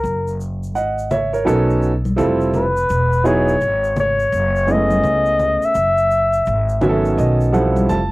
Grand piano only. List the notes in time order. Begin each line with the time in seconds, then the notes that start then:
0.75 D#5 F#5
1.11 C#5 E5
1.33 A#4 C#5
1.45 F#3 B3 C#4 D#4 A4
2.16 G3 C4 E4 F4 A4
3.24 F#3 B3 D#4 E4 G#4
4.67 G#3 B3 C#4 E4 G#4
4.74 A3
6.81 D#3 F#3 B3 C#4 F#4 E5
6.89 A4
7.18 D#5
7.52 F3 G3 C4 E4 A4 F#5
7.89 A5